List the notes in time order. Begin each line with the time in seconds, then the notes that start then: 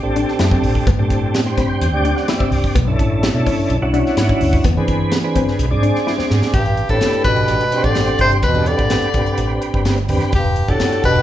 0.03 A1 C4 D4 G4 A4
0.16 D4, closed hi-hat
0.28 snare
0.39 F#2 E4, snare, closed hi-hat
0.51 C4, kick
0.63 A1, open hi-hat
0.75 kick
0.87 G1 B3, kick, closed hi-hat
0.98 A2 C4 D4 G4 A4
1.10 kick, closed hi-hat
1.34 snare, closed hi-hat
1.45 C4 D4 G4 C5
1.57 C4 B5, kick, snare, closed hi-hat
1.70 G5
1.81 E2 G5, closed hi-hat
1.93 D2 C4 D4 G4 D5
2.05 D4, closed hi-hat
2.16 F#5, snare
2.28 E4 E5, snare, closed hi-hat
2.40 C4, muted fretless electric bass stroke, kick
2.51 C2 D5, open hi-hat
2.64 muted fretless electric bass stroke, kick
2.75 B1 B3, kick, closed hi-hat
2.87 C#4 D4 E4 A4
2.99 A1, kick, closed hi-hat
3.23 snare, closed hi-hat
3.34 B2 C#4 D4 E4 A4
3.46 C#4, kick, open hi-hat
3.57 muted fretless electric bass stroke
3.70 B1, closed hi-hat
3.82 B1 C#4 D4 E4 F#4
3.94 D4, closed hi-hat
4.06 snare
4.17 G#2 E4, snare, closed hi-hat
4.29 C#4, kick
4.41 D2, open hi-hat
4.53 kick
4.64 E2 B3, kick, closed hi-hat
4.77 E3 C4 D4 G#4 B4
4.88 kick, closed hi-hat
5.12 snare, closed hi-hat
5.24 C4 D4 G#4 B4
5.35 C4, kick, closed hi-hat
5.48 snare
5.59 B1, closed hi-hat
5.71 G#2 C4 D4 G#4 D5
5.83 D4, closed hi-hat
5.96 snare
6.07 E4, snare
6.18 C4, muted fretless electric bass stroke, snare
6.30 G#2, snare
6.42 muted fretless electric bass stroke, snare
6.54 A1 G2 G4, kick, closed hi-hat
6.66 closed hi-hat
6.77 closed hi-hat
6.89 A1 A2 C4 D4 G4 A4 B4, kick, closed hi-hat
7.01 A3 D4 G4 B4, snare, closed hi-hat
7.13 muted fretless electric bass stroke, closed hi-hat
7.24 A1 B2 B4, kick, closed hi-hat
7.36 closed hi-hat
7.48 A1, closed hi-hat
7.61 closed hi-hat
7.71 C4 D4 G4 C5, muted fretless electric bass stroke, closed hi-hat
7.84 A1 D3 D5, kick, closed hi-hat
7.95 snare, closed hi-hat
8.07 closed hi-hat
8.19 G1 C3 C5, kick, open hi-hat
8.31 closed hi-hat
8.43 E2 B2 B4, kick, closed hi-hat
8.55 C4 D4 G4 A4, closed hi-hat
8.66 D3 C4 D4 G4 B4 D5, closed hi-hat
8.79 A1, kick, closed hi-hat
8.90 snare, closed hi-hat
9.02 muted fretless electric bass stroke, closed hi-hat
9.14 A1 C4 D4 G4 B4, kick, closed hi-hat
9.26 muted fretless electric bass stroke, closed hi-hat
9.38 A1, closed hi-hat
9.62 closed hi-hat
9.74 G1, kick
9.85 snare, closed hi-hat
9.98 closed hi-hat
10.09 E2 C4 D4 G4 B4, kick, open hi-hat
10.21 snare, closed hi-hat
10.32 E1 G2 G4, kick, closed hi-hat
10.44 closed hi-hat
10.56 closed hi-hat
10.68 E1 A2 D4 F#4 G4 A4, kick, closed hi-hat
10.80 D4 F#4 G4 A4, snare, closed hi-hat
10.91 muted fretless electric bass stroke, closed hi-hat
11.04 E1 B2 B4, kick, closed hi-hat
11.16 closed hi-hat